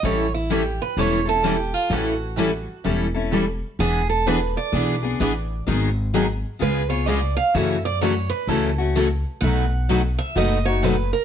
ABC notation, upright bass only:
X:1
M:4/4
L:1/8
Q:"Swing" 1/4=128
K:A
V:1 name="Upright bass" clef=bass
A,,,4 E,,,4 | A,,,4 E,,,4 | E,,,4 B,,,2 A,,,2 | G,,,4 C,,4 |
F,,4 C,,4 | B,,,4 F,,,4 |]